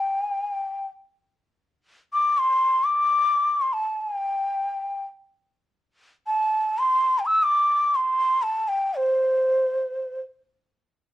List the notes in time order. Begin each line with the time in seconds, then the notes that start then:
Already playing: G5
2.13 D6
2.38 C6
2.84 D6
3.61 C6
3.73 A5
4.01 G#5
4.16 G5
6.27 A5
6.78 C6
7.19 G5
7.26 E6
7.43 D6
7.95 C6
8.42 A5
8.68 G5
8.95 C5